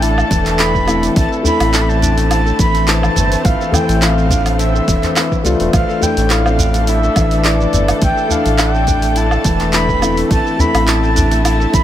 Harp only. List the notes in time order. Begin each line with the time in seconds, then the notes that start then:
Already playing: E3 A3 C4 D4 A4
0.02 E4
0.17 A4
0.31 E3
0.46 A3
0.59 E4
0.75 E3
0.88 A3
1.03 A3
1.16 A3
1.32 A4
1.45 E4
1.60 A3
1.73 E4
1.89 C4
2.02 D4
2.17 A3
2.30 E4
2.46 A4
2.59 E3
2.74 A3
2.87 E4
3.03 E3
3.16 A3
3.31 A3
3.45 A3
3.60 A4
3.73 E4
3.89 A3
4.02 E4
4.18 C4
4.31 D4
4.46 A3
4.59 E4
4.74 A4
4.88 E3
5.03 A3
5.16 E4
5.31 E3
5.45 A3
5.60 A3
5.73 A3
5.89 A4
6.01 E4
6.17 A3
6.30 E4
6.46 C4
6.59 D4
6.75 A3
6.88 E4
7.04 A4
7.17 E3
7.32 A3
7.45 E4
7.60 E3
7.74 A3
7.89 A3
8.02 A3
8.17 A4
8.30 E4
8.46 A3
8.59 E4
8.75 C4
8.87 D4
9.03 A3
9.16 E4
9.32 A4
9.45 E3
9.60 A3
9.74 E4
9.89 E3
10.02 A3
10.17 A3
10.30 A3
10.46 A4
10.59 E4
10.74 A3
10.87 E4
11.03 C4
11.16 D4
11.31 A3
11.45 E4
11.60 A4
11.73 E3